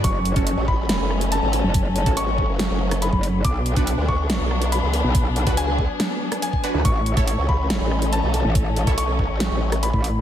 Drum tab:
HH |x-xxx---x--xx-o-|x-xxx---x--xx-o-|x-xxx---x--xx-o-|x-xxx---x--xx-o-|
SD |--------o-r-----|--------o--r----|--------o-r-----|--------o--r----|
BD |o--o--o---------|o--o--o------o--|o--o--o---------|o--o--o------o--|

HH |x-xxx---x--xx-o-|x-xxx---x--xx-o-|
SD |--------o-r-----|--------o--r----|
BD |o--o--o---------|o--o--o------o--|